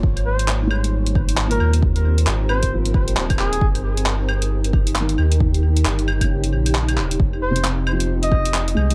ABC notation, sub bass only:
X:1
M:4/4
L:1/8
Q:"Swing 16ths" 1/4=134
K:Fm
V:1 name="Sub bass" clef=bass
A,,,6- A,,, E,,- | E,,2 A,,,3 A,,, E,,,2 | G,,,6- G,,, E,,- | E,,2 G,,,3 B,,,2 E,,, |
F,,,6- F,,, C,, |]